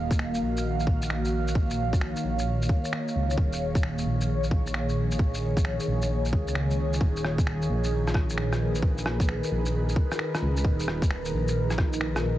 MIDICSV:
0, 0, Header, 1, 4, 480
1, 0, Start_track
1, 0, Key_signature, -6, "minor"
1, 0, Tempo, 454545
1, 1643, Time_signature, 4, 2, 24, 8
1, 13076, End_track
2, 0, Start_track
2, 0, Title_t, "Analog synth pad"
2, 0, Program_c, 0, 89
2, 0, Note_on_c, 0, 51, 73
2, 0, Note_on_c, 0, 58, 85
2, 0, Note_on_c, 0, 66, 74
2, 0, Note_on_c, 0, 75, 89
2, 0, Note_on_c, 0, 77, 89
2, 1052, Note_on_c, 0, 73, 76
2, 1350, Note_off_c, 0, 75, 0
2, 3162, Note_on_c, 0, 68, 73
2, 3286, Note_off_c, 0, 66, 0
2, 7398, Note_off_c, 0, 58, 0
2, 7688, Note_on_c, 0, 63, 87
2, 8343, Note_on_c, 0, 70, 71
2, 8529, Note_off_c, 0, 77, 0
2, 8776, Note_on_c, 0, 71, 71
2, 8810, Note_off_c, 0, 73, 0
2, 13076, Note_off_c, 0, 51, 0
2, 13076, Note_off_c, 0, 63, 0
2, 13076, Note_off_c, 0, 68, 0
2, 13076, Note_off_c, 0, 70, 0
2, 13076, Note_off_c, 0, 71, 0
2, 13076, End_track
3, 0, Start_track
3, 0, Title_t, "Detuned saw bass"
3, 0, Program_c, 1, 39
3, 0, Note_on_c, 1, 27, 94
3, 430, Note_off_c, 1, 27, 0
3, 440, Note_on_c, 1, 34, 77
3, 911, Note_off_c, 1, 34, 0
3, 917, Note_on_c, 1, 34, 74
3, 2256, Note_off_c, 1, 34, 0
3, 2364, Note_on_c, 1, 34, 80
3, 2833, Note_off_c, 1, 34, 0
3, 3330, Note_on_c, 1, 37, 93
3, 3553, Note_off_c, 1, 37, 0
3, 3564, Note_on_c, 1, 27, 94
3, 4272, Note_off_c, 1, 27, 0
3, 4282, Note_on_c, 1, 34, 77
3, 4752, Note_off_c, 1, 34, 0
3, 4763, Note_on_c, 1, 34, 76
3, 6099, Note_off_c, 1, 34, 0
3, 6201, Note_on_c, 1, 34, 79
3, 6682, Note_on_c, 1, 37, 75
3, 6698, Note_off_c, 1, 34, 0
3, 7392, Note_off_c, 1, 37, 0
3, 7400, Note_on_c, 1, 27, 96
3, 8111, Note_off_c, 1, 27, 0
3, 8124, Note_on_c, 1, 34, 78
3, 8592, Note_off_c, 1, 34, 0
3, 8597, Note_on_c, 1, 34, 77
3, 9936, Note_off_c, 1, 34, 0
3, 10040, Note_on_c, 1, 34, 75
3, 10511, Note_off_c, 1, 34, 0
3, 11000, Note_on_c, 1, 37, 92
3, 11228, Note_off_c, 1, 37, 0
3, 11240, Note_on_c, 1, 27, 98
3, 11951, Note_off_c, 1, 27, 0
3, 11964, Note_on_c, 1, 34, 80
3, 12433, Note_off_c, 1, 34, 0
3, 12441, Note_on_c, 1, 34, 74
3, 13076, Note_off_c, 1, 34, 0
3, 13076, End_track
4, 0, Start_track
4, 0, Title_t, "Drums"
4, 113, Note_on_c, 9, 36, 96
4, 121, Note_on_c, 9, 82, 52
4, 203, Note_on_c, 9, 26, 96
4, 218, Note_off_c, 9, 36, 0
4, 226, Note_off_c, 9, 82, 0
4, 308, Note_off_c, 9, 26, 0
4, 363, Note_on_c, 9, 82, 41
4, 469, Note_off_c, 9, 82, 0
4, 604, Note_on_c, 9, 82, 53
4, 710, Note_off_c, 9, 82, 0
4, 843, Note_on_c, 9, 82, 31
4, 918, Note_on_c, 9, 36, 96
4, 949, Note_off_c, 9, 82, 0
4, 1024, Note_off_c, 9, 36, 0
4, 1080, Note_on_c, 9, 82, 53
4, 1163, Note_on_c, 9, 26, 102
4, 1185, Note_off_c, 9, 82, 0
4, 1269, Note_off_c, 9, 26, 0
4, 1318, Note_on_c, 9, 82, 31
4, 1424, Note_off_c, 9, 82, 0
4, 1562, Note_on_c, 9, 82, 54
4, 1639, Note_on_c, 9, 36, 115
4, 1667, Note_off_c, 9, 82, 0
4, 1745, Note_off_c, 9, 36, 0
4, 1799, Note_on_c, 9, 82, 42
4, 1905, Note_off_c, 9, 82, 0
4, 2037, Note_on_c, 9, 36, 102
4, 2041, Note_on_c, 9, 82, 55
4, 2126, Note_on_c, 9, 26, 98
4, 2143, Note_off_c, 9, 36, 0
4, 2147, Note_off_c, 9, 82, 0
4, 2232, Note_off_c, 9, 26, 0
4, 2285, Note_on_c, 9, 82, 43
4, 2390, Note_off_c, 9, 82, 0
4, 2524, Note_on_c, 9, 82, 53
4, 2629, Note_off_c, 9, 82, 0
4, 2769, Note_on_c, 9, 82, 31
4, 2843, Note_on_c, 9, 36, 99
4, 2875, Note_off_c, 9, 82, 0
4, 2949, Note_off_c, 9, 36, 0
4, 3005, Note_on_c, 9, 82, 53
4, 3092, Note_on_c, 9, 26, 101
4, 3111, Note_off_c, 9, 82, 0
4, 3197, Note_off_c, 9, 26, 0
4, 3253, Note_on_c, 9, 82, 31
4, 3359, Note_off_c, 9, 82, 0
4, 3488, Note_on_c, 9, 82, 54
4, 3564, Note_on_c, 9, 36, 112
4, 3594, Note_off_c, 9, 82, 0
4, 3670, Note_off_c, 9, 36, 0
4, 3725, Note_on_c, 9, 82, 41
4, 3831, Note_off_c, 9, 82, 0
4, 3962, Note_on_c, 9, 36, 107
4, 3965, Note_on_c, 9, 82, 55
4, 4047, Note_on_c, 9, 26, 97
4, 4067, Note_off_c, 9, 36, 0
4, 4070, Note_off_c, 9, 82, 0
4, 4152, Note_off_c, 9, 26, 0
4, 4206, Note_on_c, 9, 82, 41
4, 4311, Note_off_c, 9, 82, 0
4, 4448, Note_on_c, 9, 82, 52
4, 4553, Note_off_c, 9, 82, 0
4, 4684, Note_on_c, 9, 82, 31
4, 4765, Note_on_c, 9, 36, 102
4, 4790, Note_off_c, 9, 82, 0
4, 4870, Note_off_c, 9, 36, 0
4, 4928, Note_on_c, 9, 82, 50
4, 5008, Note_on_c, 9, 26, 105
4, 5034, Note_off_c, 9, 82, 0
4, 5113, Note_off_c, 9, 26, 0
4, 5165, Note_on_c, 9, 82, 30
4, 5270, Note_off_c, 9, 82, 0
4, 5402, Note_on_c, 9, 82, 54
4, 5483, Note_on_c, 9, 36, 112
4, 5508, Note_off_c, 9, 82, 0
4, 5589, Note_off_c, 9, 36, 0
4, 5642, Note_on_c, 9, 82, 39
4, 5748, Note_off_c, 9, 82, 0
4, 5880, Note_on_c, 9, 36, 100
4, 5885, Note_on_c, 9, 82, 52
4, 5964, Note_on_c, 9, 26, 101
4, 5985, Note_off_c, 9, 36, 0
4, 5990, Note_off_c, 9, 82, 0
4, 6069, Note_off_c, 9, 26, 0
4, 6123, Note_on_c, 9, 82, 40
4, 6228, Note_off_c, 9, 82, 0
4, 6359, Note_on_c, 9, 82, 50
4, 6465, Note_off_c, 9, 82, 0
4, 6603, Note_on_c, 9, 82, 29
4, 6682, Note_on_c, 9, 36, 101
4, 6708, Note_off_c, 9, 82, 0
4, 6788, Note_off_c, 9, 36, 0
4, 6839, Note_on_c, 9, 82, 50
4, 6921, Note_on_c, 9, 26, 105
4, 6945, Note_off_c, 9, 82, 0
4, 7026, Note_off_c, 9, 26, 0
4, 7082, Note_on_c, 9, 82, 29
4, 7188, Note_off_c, 9, 82, 0
4, 7323, Note_on_c, 9, 82, 52
4, 7400, Note_on_c, 9, 36, 112
4, 7429, Note_off_c, 9, 82, 0
4, 7506, Note_off_c, 9, 36, 0
4, 7567, Note_on_c, 9, 82, 39
4, 7650, Note_on_c, 9, 37, 57
4, 7672, Note_off_c, 9, 82, 0
4, 7755, Note_off_c, 9, 37, 0
4, 7796, Note_on_c, 9, 36, 100
4, 7803, Note_on_c, 9, 82, 48
4, 7887, Note_on_c, 9, 26, 100
4, 7902, Note_off_c, 9, 36, 0
4, 7909, Note_off_c, 9, 82, 0
4, 7993, Note_off_c, 9, 26, 0
4, 8048, Note_on_c, 9, 82, 39
4, 8153, Note_off_c, 9, 82, 0
4, 8281, Note_on_c, 9, 82, 47
4, 8386, Note_off_c, 9, 82, 0
4, 8526, Note_on_c, 9, 37, 35
4, 8526, Note_on_c, 9, 82, 29
4, 8599, Note_on_c, 9, 36, 99
4, 8608, Note_off_c, 9, 37, 0
4, 8608, Note_on_c, 9, 37, 55
4, 8632, Note_off_c, 9, 82, 0
4, 8705, Note_off_c, 9, 36, 0
4, 8714, Note_off_c, 9, 37, 0
4, 8763, Note_on_c, 9, 82, 48
4, 8845, Note_on_c, 9, 26, 100
4, 8869, Note_off_c, 9, 82, 0
4, 8951, Note_off_c, 9, 26, 0
4, 9003, Note_on_c, 9, 37, 61
4, 9003, Note_on_c, 9, 82, 29
4, 9109, Note_off_c, 9, 37, 0
4, 9109, Note_off_c, 9, 82, 0
4, 9242, Note_on_c, 9, 82, 48
4, 9319, Note_on_c, 9, 36, 108
4, 9347, Note_off_c, 9, 82, 0
4, 9424, Note_off_c, 9, 36, 0
4, 9483, Note_on_c, 9, 82, 40
4, 9564, Note_on_c, 9, 37, 61
4, 9588, Note_off_c, 9, 82, 0
4, 9670, Note_off_c, 9, 37, 0
4, 9714, Note_on_c, 9, 36, 99
4, 9723, Note_on_c, 9, 82, 48
4, 9806, Note_on_c, 9, 26, 97
4, 9820, Note_off_c, 9, 36, 0
4, 9829, Note_off_c, 9, 82, 0
4, 9912, Note_off_c, 9, 26, 0
4, 9964, Note_on_c, 9, 82, 39
4, 10069, Note_off_c, 9, 82, 0
4, 10198, Note_on_c, 9, 82, 48
4, 10304, Note_off_c, 9, 82, 0
4, 10443, Note_on_c, 9, 82, 30
4, 10519, Note_on_c, 9, 36, 95
4, 10549, Note_off_c, 9, 82, 0
4, 10625, Note_off_c, 9, 36, 0
4, 10682, Note_on_c, 9, 37, 47
4, 10682, Note_on_c, 9, 82, 49
4, 10762, Note_on_c, 9, 26, 96
4, 10788, Note_off_c, 9, 37, 0
4, 10788, Note_off_c, 9, 82, 0
4, 10867, Note_off_c, 9, 26, 0
4, 10925, Note_on_c, 9, 37, 62
4, 10925, Note_on_c, 9, 82, 29
4, 11031, Note_off_c, 9, 37, 0
4, 11031, Note_off_c, 9, 82, 0
4, 11161, Note_on_c, 9, 82, 49
4, 11241, Note_on_c, 9, 36, 109
4, 11267, Note_off_c, 9, 82, 0
4, 11347, Note_off_c, 9, 36, 0
4, 11403, Note_on_c, 9, 82, 40
4, 11489, Note_on_c, 9, 37, 62
4, 11508, Note_off_c, 9, 82, 0
4, 11594, Note_off_c, 9, 37, 0
4, 11638, Note_on_c, 9, 36, 96
4, 11645, Note_on_c, 9, 82, 51
4, 11727, Note_on_c, 9, 26, 93
4, 11743, Note_off_c, 9, 36, 0
4, 11751, Note_off_c, 9, 82, 0
4, 11832, Note_off_c, 9, 26, 0
4, 11882, Note_on_c, 9, 82, 41
4, 11988, Note_off_c, 9, 82, 0
4, 12124, Note_on_c, 9, 82, 51
4, 12230, Note_off_c, 9, 82, 0
4, 12360, Note_on_c, 9, 37, 36
4, 12360, Note_on_c, 9, 82, 29
4, 12440, Note_on_c, 9, 36, 94
4, 12445, Note_off_c, 9, 37, 0
4, 12445, Note_on_c, 9, 37, 60
4, 12465, Note_off_c, 9, 82, 0
4, 12546, Note_off_c, 9, 36, 0
4, 12550, Note_off_c, 9, 37, 0
4, 12599, Note_on_c, 9, 82, 50
4, 12681, Note_on_c, 9, 26, 101
4, 12705, Note_off_c, 9, 82, 0
4, 12786, Note_off_c, 9, 26, 0
4, 12841, Note_on_c, 9, 37, 67
4, 12841, Note_on_c, 9, 82, 30
4, 12946, Note_off_c, 9, 37, 0
4, 12946, Note_off_c, 9, 82, 0
4, 13076, End_track
0, 0, End_of_file